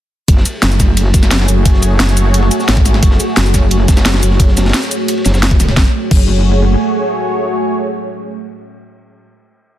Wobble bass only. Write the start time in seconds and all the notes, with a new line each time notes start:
0.28 F#1
0.63 F#1
1.14 F#1
1.48 F#1
2.00 F#1
2.68 G#1
3.03 F#1
3.37 F#1
3.88 F#1
4.23 F#1
5.26 F#1
5.77 F#1
6.11 F#1